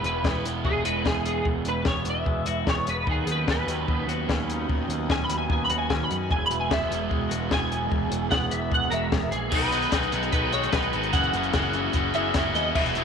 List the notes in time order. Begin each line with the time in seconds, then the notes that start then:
Already playing: E2 E3 G#3 B3 E4 G#4
0.03 E1 E3 B4, closed hi-hat
0.24 E1 B3, kick, snare
0.43 E1 E3, snare, closed hi-hat
0.63 E1 G#3 G#4, kick
0.85 E1 F#4 B4, closed hi-hat
1.04 E1 B3 G#4, kick, snare
1.26 E3 G#4, closed hi-hat
1.45 E1 E2, kick
1.65 E1 E3 B4, closed hi-hat
1.85 E1 B3 C#5, kick, snare
2.05 E1 E3, closed hi-hat
2.10 E5
2.26 E1 G#3, kick
2.46 E1 F#4, closed hi-hat
2.67 E1 B3 C#5, kick, snare
2.87 E1 E3 B4, closed hi-hat
3.07 D#2 D#3 F#3 B3 C#4 F#4 G#4 B4 D#5, kick
3.26 D#2 D#3, closed hi-hat
3.31 B4
3.47 D#2 C#4 B4, kick, snare
3.67 D#2 D#3, snare, closed hi-hat
3.88 D#2 B3, kick
4.06 D#2 F#4, closed hi-hat
4.28 D#2 C#4, kick, snare
4.48 D#3, closed hi-hat
4.68 D#2 D#3, kick
4.88 D#2 D#3, closed hi-hat
5.09 D#2 C#4 G#5, kick, snare
5.24 B5
5.29 D#2 D#3, closed hi-hat
5.38 G#5
5.50 D#2 B3 G#5, kick
5.65 B5
5.70 D#2 F#4, closed hi-hat
5.78 G#5
5.89 D#2 C#4 G#5, kick, snare
6.03 B5
6.10 F#2 D#3, closed hi-hat
6.17 G#5
6.29 E1 E2 E3 G#3 B3 E4 G#4 E5 G#5, kick
6.46 B5
6.50 E1 E3, closed hi-hat
6.60 G#5
6.70 E1 B3 E5, kick, snare
6.89 E1 E3, snare, closed hi-hat
7.09 E1 G#3, kick
7.29 E1 F#4, closed hi-hat
7.49 E1 B3, kick, snare
7.53 G#5
7.70 E3, closed hi-hat
7.90 E1 E2, kick
8.11 E1 E3, closed hi-hat
8.30 E1 B3 F#5, kick, snare
8.50 E1 E3 E5, closed hi-hat
8.71 E1 G#3 F#5, kick
8.90 E1 F#4 A#4 E5, closed hi-hat
9.11 E1 B3, kick, snare
9.31 A#1 E3 G#4, closed hi-hat
9.50 B1 B2 D#3 F#3 G#3 B3 D#4 G#4 B4 D#5 F#5 B5, kick, crash
9.54 F#4
9.62 closed hi-hat
9.72 B2 D#3 F#3 G#3 B3 D#4 F#4, closed hi-hat
9.82 closed hi-hat
9.91 B1 B2 D#3 F#3 G#3 B3 D#4 F#4, kick, snare, closed hi-hat
10.03 closed hi-hat
10.11 B1 B2 D#3 F#3 G#3 B3 D#4 F#4, closed hi-hat
10.23 closed hi-hat
10.32 B1 B2 D#3 F#3 G#3 B3 D#4 F#4 B4, kick, closed hi-hat
10.52 B2 D#3 F#3 G#3 B3 D#4 F#4 C#5, closed hi-hat
10.63 closed hi-hat
10.72 B1 B2 D#3 F#3 G#3 B3 D#4 B4, kick, snare, closed hi-hat
10.76 F#4
10.82 closed hi-hat
10.92 G#1 B2 D#3 F#3 G#3 B3 D#4 F#4, closed hi-hat
11.03 closed hi-hat
11.13 F#1 F#2 C#3 E3 A#3 B3 C#4 E4 F#4 E5 F#5 C#6, kick, closed hi-hat
11.23 closed hi-hat
11.33 F#1 F#2 C#3 E3 A#3 B3 C#4 E4 F#4, closed hi-hat
11.43 closed hi-hat
11.53 F#1 F#2 C#3 E3 A#3 B3 C#4 E4 F#4, kick, snare, closed hi-hat
11.73 F#2 C#3 E3 A#3 B3 C#4 E4 F#4, closed hi-hat
11.93 F#1 F#2 C#3 E3 A#3 B3 C#4 E4 F#4, kick, closed hi-hat
12.13 F#1 F#2 C#3 E3 A#3 B3 C#4 E4 F#4 E5, closed hi-hat
12.34 F#1 F#2 C#3 E3 A#3 B3 C#4 E4 F#4, kick, snare, closed hi-hat
12.54 D#2 F#2 C#3 E3 A#3 B3 C#4 E4 F#4 D#5, closed hi-hat
12.74 E1 E2 B2 E3 F#3 B3 E4 F#4 E5 E6, kick, crash
12.86 closed hi-hat
12.95 E2 B2 E3 F#3 B3 E4 F#4, closed hi-hat